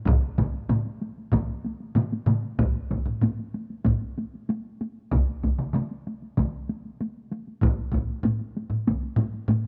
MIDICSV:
0, 0, Header, 1, 2, 480
1, 0, Start_track
1, 0, Tempo, 628931
1, 52, Time_signature, 4, 2, 24, 8
1, 7381, End_track
2, 0, Start_track
2, 0, Title_t, "Taiko and cinematic ensemble drums"
2, 41, Note_on_c, 9, 45, 92
2, 46, Note_on_c, 9, 48, 64
2, 54, Note_on_c, 9, 47, 92
2, 57, Note_on_c, 9, 41, 98
2, 117, Note_off_c, 9, 45, 0
2, 122, Note_off_c, 9, 48, 0
2, 130, Note_off_c, 9, 47, 0
2, 133, Note_off_c, 9, 41, 0
2, 171, Note_on_c, 9, 48, 21
2, 247, Note_off_c, 9, 48, 0
2, 291, Note_on_c, 9, 45, 84
2, 291, Note_on_c, 9, 47, 91
2, 293, Note_on_c, 9, 48, 55
2, 296, Note_on_c, 9, 41, 68
2, 367, Note_off_c, 9, 45, 0
2, 367, Note_off_c, 9, 47, 0
2, 369, Note_off_c, 9, 48, 0
2, 372, Note_off_c, 9, 41, 0
2, 412, Note_on_c, 9, 48, 21
2, 488, Note_off_c, 9, 48, 0
2, 529, Note_on_c, 9, 45, 95
2, 529, Note_on_c, 9, 48, 62
2, 531, Note_on_c, 9, 47, 85
2, 605, Note_off_c, 9, 45, 0
2, 606, Note_off_c, 9, 48, 0
2, 607, Note_off_c, 9, 47, 0
2, 650, Note_on_c, 9, 48, 22
2, 726, Note_off_c, 9, 48, 0
2, 774, Note_on_c, 9, 48, 47
2, 851, Note_off_c, 9, 48, 0
2, 900, Note_on_c, 9, 48, 21
2, 976, Note_off_c, 9, 48, 0
2, 1005, Note_on_c, 9, 45, 94
2, 1014, Note_on_c, 9, 47, 100
2, 1015, Note_on_c, 9, 41, 69
2, 1018, Note_on_c, 9, 48, 69
2, 1081, Note_off_c, 9, 45, 0
2, 1090, Note_off_c, 9, 47, 0
2, 1091, Note_off_c, 9, 41, 0
2, 1095, Note_off_c, 9, 48, 0
2, 1142, Note_on_c, 9, 48, 22
2, 1219, Note_off_c, 9, 48, 0
2, 1256, Note_on_c, 9, 48, 49
2, 1332, Note_off_c, 9, 48, 0
2, 1376, Note_on_c, 9, 48, 20
2, 1453, Note_off_c, 9, 48, 0
2, 1488, Note_on_c, 9, 45, 95
2, 1499, Note_on_c, 9, 48, 65
2, 1500, Note_on_c, 9, 47, 91
2, 1565, Note_off_c, 9, 45, 0
2, 1576, Note_off_c, 9, 47, 0
2, 1576, Note_off_c, 9, 48, 0
2, 1621, Note_on_c, 9, 48, 48
2, 1697, Note_off_c, 9, 48, 0
2, 1729, Note_on_c, 9, 45, 96
2, 1734, Note_on_c, 9, 47, 93
2, 1741, Note_on_c, 9, 48, 51
2, 1805, Note_off_c, 9, 45, 0
2, 1810, Note_off_c, 9, 47, 0
2, 1817, Note_off_c, 9, 48, 0
2, 1856, Note_on_c, 9, 48, 22
2, 1932, Note_off_c, 9, 48, 0
2, 1974, Note_on_c, 9, 45, 96
2, 1975, Note_on_c, 9, 48, 68
2, 1976, Note_on_c, 9, 41, 94
2, 2051, Note_off_c, 9, 45, 0
2, 2051, Note_off_c, 9, 48, 0
2, 2052, Note_off_c, 9, 41, 0
2, 2100, Note_on_c, 9, 48, 21
2, 2176, Note_off_c, 9, 48, 0
2, 2217, Note_on_c, 9, 48, 57
2, 2221, Note_on_c, 9, 41, 69
2, 2294, Note_off_c, 9, 48, 0
2, 2297, Note_off_c, 9, 41, 0
2, 2336, Note_on_c, 9, 45, 64
2, 2340, Note_on_c, 9, 48, 22
2, 2412, Note_off_c, 9, 45, 0
2, 2417, Note_off_c, 9, 48, 0
2, 2453, Note_on_c, 9, 45, 92
2, 2466, Note_on_c, 9, 48, 68
2, 2529, Note_off_c, 9, 45, 0
2, 2542, Note_off_c, 9, 48, 0
2, 2585, Note_on_c, 9, 48, 21
2, 2661, Note_off_c, 9, 48, 0
2, 2703, Note_on_c, 9, 48, 49
2, 2780, Note_off_c, 9, 48, 0
2, 2825, Note_on_c, 9, 48, 20
2, 2901, Note_off_c, 9, 48, 0
2, 2937, Note_on_c, 9, 45, 94
2, 2943, Note_on_c, 9, 48, 68
2, 2945, Note_on_c, 9, 41, 64
2, 3013, Note_off_c, 9, 45, 0
2, 3019, Note_off_c, 9, 48, 0
2, 3021, Note_off_c, 9, 41, 0
2, 3066, Note_on_c, 9, 48, 20
2, 3143, Note_off_c, 9, 48, 0
2, 3188, Note_on_c, 9, 48, 49
2, 3264, Note_off_c, 9, 48, 0
2, 3311, Note_on_c, 9, 48, 21
2, 3388, Note_off_c, 9, 48, 0
2, 3427, Note_on_c, 9, 48, 61
2, 3503, Note_off_c, 9, 48, 0
2, 3670, Note_on_c, 9, 48, 53
2, 3746, Note_off_c, 9, 48, 0
2, 3904, Note_on_c, 9, 47, 94
2, 3905, Note_on_c, 9, 41, 83
2, 3909, Note_on_c, 9, 48, 64
2, 3980, Note_off_c, 9, 47, 0
2, 3982, Note_off_c, 9, 41, 0
2, 3986, Note_off_c, 9, 48, 0
2, 4029, Note_on_c, 9, 48, 20
2, 4106, Note_off_c, 9, 48, 0
2, 4147, Note_on_c, 9, 41, 64
2, 4149, Note_on_c, 9, 48, 55
2, 4224, Note_off_c, 9, 41, 0
2, 4225, Note_off_c, 9, 48, 0
2, 4266, Note_on_c, 9, 47, 68
2, 4342, Note_off_c, 9, 47, 0
2, 4384, Note_on_c, 9, 47, 88
2, 4393, Note_on_c, 9, 48, 63
2, 4460, Note_off_c, 9, 47, 0
2, 4469, Note_off_c, 9, 48, 0
2, 4514, Note_on_c, 9, 48, 22
2, 4591, Note_off_c, 9, 48, 0
2, 4632, Note_on_c, 9, 48, 48
2, 4708, Note_off_c, 9, 48, 0
2, 4748, Note_on_c, 9, 48, 19
2, 4825, Note_off_c, 9, 48, 0
2, 4863, Note_on_c, 9, 47, 94
2, 4866, Note_on_c, 9, 48, 65
2, 4868, Note_on_c, 9, 41, 63
2, 4940, Note_off_c, 9, 47, 0
2, 4942, Note_off_c, 9, 48, 0
2, 4944, Note_off_c, 9, 41, 0
2, 4988, Note_on_c, 9, 48, 19
2, 5064, Note_off_c, 9, 48, 0
2, 5108, Note_on_c, 9, 48, 48
2, 5185, Note_off_c, 9, 48, 0
2, 5231, Note_on_c, 9, 48, 21
2, 5307, Note_off_c, 9, 48, 0
2, 5347, Note_on_c, 9, 48, 57
2, 5423, Note_off_c, 9, 48, 0
2, 5583, Note_on_c, 9, 48, 50
2, 5659, Note_off_c, 9, 48, 0
2, 5702, Note_on_c, 9, 48, 19
2, 5779, Note_off_c, 9, 48, 0
2, 5810, Note_on_c, 9, 45, 89
2, 5822, Note_on_c, 9, 48, 62
2, 5825, Note_on_c, 9, 41, 96
2, 5887, Note_off_c, 9, 45, 0
2, 5899, Note_off_c, 9, 48, 0
2, 5901, Note_off_c, 9, 41, 0
2, 5939, Note_on_c, 9, 48, 18
2, 6016, Note_off_c, 9, 48, 0
2, 6046, Note_on_c, 9, 45, 81
2, 6055, Note_on_c, 9, 48, 50
2, 6062, Note_on_c, 9, 41, 70
2, 6122, Note_off_c, 9, 45, 0
2, 6132, Note_off_c, 9, 48, 0
2, 6139, Note_off_c, 9, 41, 0
2, 6178, Note_on_c, 9, 48, 19
2, 6254, Note_off_c, 9, 48, 0
2, 6286, Note_on_c, 9, 45, 100
2, 6295, Note_on_c, 9, 48, 64
2, 6362, Note_off_c, 9, 45, 0
2, 6372, Note_off_c, 9, 48, 0
2, 6418, Note_on_c, 9, 48, 22
2, 6494, Note_off_c, 9, 48, 0
2, 6538, Note_on_c, 9, 48, 49
2, 6614, Note_off_c, 9, 48, 0
2, 6641, Note_on_c, 9, 45, 70
2, 6654, Note_on_c, 9, 48, 21
2, 6717, Note_off_c, 9, 45, 0
2, 6731, Note_off_c, 9, 48, 0
2, 6772, Note_on_c, 9, 48, 66
2, 6774, Note_on_c, 9, 41, 67
2, 6849, Note_off_c, 9, 48, 0
2, 6851, Note_off_c, 9, 41, 0
2, 6894, Note_on_c, 9, 48, 22
2, 6970, Note_off_c, 9, 48, 0
2, 6993, Note_on_c, 9, 45, 96
2, 7010, Note_on_c, 9, 48, 53
2, 7069, Note_off_c, 9, 45, 0
2, 7087, Note_off_c, 9, 48, 0
2, 7127, Note_on_c, 9, 48, 22
2, 7203, Note_off_c, 9, 48, 0
2, 7237, Note_on_c, 9, 45, 99
2, 7244, Note_on_c, 9, 48, 70
2, 7313, Note_off_c, 9, 45, 0
2, 7320, Note_off_c, 9, 48, 0
2, 7381, End_track
0, 0, End_of_file